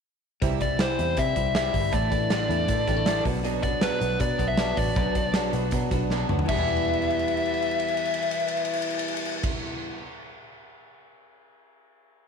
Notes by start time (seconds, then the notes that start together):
0.42 C2 C3 E3 G3 C4 E4, kick, closed hi-hat
0.60 G3 C4 E4 D5, kick, closed hi-hat
0.79 C3 E3 G3 C4 E4 C5, snare, closed hi-hat
0.99 E2 G3 C4 E4, closed hi-hat
1.17 C3 E3 G3 C4 E4 E5, kick, closed hi-hat
1.36 C2 G3 C4 E4, kick, closed hi-hat
1.54 C3 E3 G3 C4 E4 E5, snare, closed hi-hat
1.73 G1 G3 C4 E4, kick, open hi-hat
1.92 A1 A2 D3 A3 D4 E4 D5, kick, closed hi-hat
2.10 E3 A3 D4 E4, kick, closed hi-hat
2.30 A2 D3 A3 D4 E4, snare, closed hi-hat
2.48 E2 A3 D4 E4, closed hi-hat
2.68 A2 D3 E3 A3 D4 E4, kick, closed hi-hat
2.87 A1 G3 A3 D4 E4, kick, snare, closed hi-hat
2.96 A3
3.05 A2 D3 A3 D4 E4, snare, closed hi-hat
3.25 B1 B2 B3 D4 F#4, kick, open hi-hat
3.44 B2 F#3 B3 D4 F#4, closed hi-hat
3.62 F#3 B3 D4 F#4 D5, kick, closed hi-hat
3.81 B2 F#3 B3 D4 F#4 B4, snare, closed hi-hat
4.01 B1 B3 D4 F#4, closed hi-hat
4.19 B2 F#3 B3 D4 F#4 D5, kick, closed hi-hat
4.39 B1 B3 D4 F#4, kick, closed hi-hat
4.48 E5
4.57 B2 F#3 B3 D4 F#4, snare, closed hi-hat
4.77 A1 F#3 B3 D4 F#4 D5, kick, open hi-hat
4.95 B1 B2 F#3 B3 D4 F#4, kick, closed hi-hat
5.15 F#3 B3 D4 F#4, kick, closed hi-hat
5.34 B2 F#3 B3 D4 F#4, snare, closed hi-hat
5.53 B1 B3 D4 F#4, closed hi-hat
5.71 B2 F#3 B3 D4 F#4, kick, closed hi-hat
5.91 B1 B3 D4 F#4, kick, snare, closed hi-hat
6.10 B2 F#3 B3 D4 F#4, snare
6.29 D2 F#3 B3 D4 F#4, mid tom
6.39 floor tom
6.45 E1 E2 E3 E5, kick, crash
6.49 B2 E3 G3
6.55 G3 B3
6.59 E4
6.68 crash
6.77 ride
6.85 crash
6.93 ride
7.02 crash
7.10 ride
7.19 crash
7.28 ride
7.37 crash
7.45 ride
7.54 crash
7.62 ride
7.71 crash
7.80 ride
7.88 crash
7.97 ride
8.05 crash
8.14 ride
8.22 crash
8.31 ride
8.40 crash
8.48 ride
8.57 crash
8.65 ride
8.73 crash
8.82 ride
8.90 crash
8.99 ride
9.08 crash
9.17 ride
9.25 crash
9.44 kick, crash